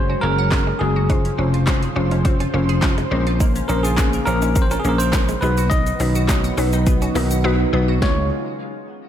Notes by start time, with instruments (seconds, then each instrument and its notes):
Already playing: slap bass F#1, analog synth pad F#3 G#3 C#4, synth pluck C#4 F#4 G#4, tine electric piano C5
0.10 clean electric guitar C#4, synth arpeggio sound F#4
0.21 slap bass F#1, clean electric guitar A#3, synth pluck C#4 F#4 G#4, synth arpeggio sound C#4, tine electric piano A#4
0.38 synth arpeggio sound F#5
0.51 synth arpeggio sound F#3, synth pluck C#4 F#4 G#4, muted clean electric guitar stroke, kick, snare, clap
0.67 clean electric guitar G#3
0.79 slap bass F#1, clean electric guitar G#3, synth arpeggio sound G#3, synth pluck C#4 F#4 G#4, tine electric piano G#4
0.96 synth arpeggio sound F#4
1.10 analog synth pad C#3 F3 C5, synth arpeggio sound G#3, synth pluck C#4 F4 C5, clean electric guitar D#4, kick, closed hi-hat
1.25 synth arpeggio sound C#4, closed hi-hat
1.38 slap bass F1, synth pluck C#4 F4 C5, clean electric guitar C#4
1.54 synth arpeggio sound F4, muted clean electric guitar stroke, closed hi-hat
1.67 synth pluck C#4 F4 C5, synth arpeggio sound C#4, muted clean electric guitar stroke, kick, snare, clap, closed hi-hat
1.83 synth arpeggio sound G#4, closed hi-hat
1.96 slap bass F1, synth arpeggio sound G#3, synth pluck C#4 F4 C5, clean electric guitar C#4
2.11 synth arpeggio sound C#4, clean electric guitar D#4, closed hi-hat
2.25 synth arpeggio sound C4, synth pluck C#4 F4 C5, muted clean electric guitar stroke, kick, closed hi-hat
2.40 clean electric guitar C#4, synth arpeggio sound F4, closed hi-hat
2.54 slap bass F1, clean electric guitar A#3, synth pluck C#4 F4 C5, synth arpeggio sound C#4
2.69 synth arpeggio sound G#4, closed hi-hat
2.82 synth arpeggio sound G#3, synth pluck C#4 F4 C5, muted clean electric guitar stroke, kick, snare, clap, closed hi-hat
2.98 clean electric guitar G#3, closed hi-hat
3.11 slap bass A#1, analog synth pad C#3 A#3, clean electric guitar G#3, synth arpeggio sound C4, synth pluck C#4 A#4 C5
3.27 synth arpeggio sound F4, closed hi-hat
3.40 synth arpeggio sound A#3, clean electric guitar D#4, kick, closed hi-hat, shaker
3.56 synth arpeggio sound C#4, closed hi-hat, shaker
3.68 slap bass A#1, synth pluck C#4 A#4 C5, clean electric guitar C#4, tine electric piano A#4, shaker
3.83 synth arpeggio sound F4, tine electric piano G#4, muted clean electric guitar stroke, closed hi-hat, shaker
3.97 synth pluck C#4 A#4 C5, synth arpeggio sound C#4, muted clean electric guitar stroke, kick, snare, clap, closed hi-hat, shaker
4.13 synth arpeggio sound A#4, closed hi-hat, shaker
4.26 slap bass A#1, synth arpeggio sound A#3, synth pluck C#4 A#4 C5, clean electric guitar C#4, tine electric piano A#4, shaker
4.42 synth arpeggio sound C#4, clean electric guitar D#4, closed hi-hat, shaker
4.55 synth arpeggio sound C4, synth pluck C#4 A#4 C5, muted clean electric guitar stroke, kick, closed hi-hat, shaker
4.62 tine electric piano C5
4.71 clean electric guitar C#4, synth arpeggio sound F4, tine electric piano A#4, closed hi-hat, shaker
4.80 tine electric piano G#4
4.84 slap bass A#1, clean electric guitar A#3, synth pluck C#4 A#4 C5, synth arpeggio sound C#4, shaker
4.89 tine electric piano A#4
4.98 synth arpeggio sound A#4, tine electric piano C5, closed hi-hat, shaker
5.13 synth arpeggio sound A#3, synth pluck C#4 A#4 C5, muted clean electric guitar stroke, kick, snare, clap, closed hi-hat, shaker
5.29 clean electric guitar G#3, closed hi-hat, shaker
5.41 slap bass B1, analog synth pad D#3 F#3 B3, clean electric guitar G#3, synth arpeggio sound B3, synth pluck D#4 F#4 B4, tine electric piano B4, shaker
5.58 synth arpeggio sound F#4, closed hi-hat, shaker
5.70 synth arpeggio sound F#3, clean electric guitar D#4, tine electric piano D#5, kick, closed hi-hat, shaker
5.86 synth arpeggio sound D#4, closed hi-hat, shaker
6.00 slap bass B1, clean electric guitar C#4, synth pluck D#4 F#4 B4, open hi-hat, shaker
6.15 synth arpeggio sound F#4, muted clean electric guitar stroke, closed hi-hat, shaker
6.28 synth pluck D#4 F#4 C#5, synth arpeggio sound D#4, muted clean electric guitar stroke, kick, snare, clap, closed hi-hat, shaker
6.44 synth arpeggio sound F#5, closed hi-hat, shaker
6.57 slap bass B1, synth arpeggio sound F#3, clean electric guitar C#4, synth pluck D#4 F#4 B4, open hi-hat, shaker
6.73 synth arpeggio sound D#4, clean electric guitar D#4, closed hi-hat, shaker
6.86 synth arpeggio sound B3, synth pluck D#4 F#4 B4, muted clean electric guitar stroke, kick, closed hi-hat, shaker
7.02 clean electric guitar C#4, synth arpeggio sound F#4, closed hi-hat, shaker
7.15 slap bass B1, clean electric guitar A#3, synth pluck D#4 F#4 A#4, synth arpeggio sound D#4, open hi-hat, shaker
7.31 synth arpeggio sound F#5, closed hi-hat, shaker
7.44 synth arpeggio sound F#3, synth pluck D#4 F#4 B4
7.73 slap bass B1, synth arpeggio sound B3, synth pluck D#4 F#4 B4
7.88 synth arpeggio sound F#4
8.02 analog synth pad C#3 G#3 D#4 F4, synth arpeggio sound G#3 C#4 D#4 F4, clean electric guitar G#3, synth pluck D#4 F4 C#5, tine electric piano C#5, kick, snare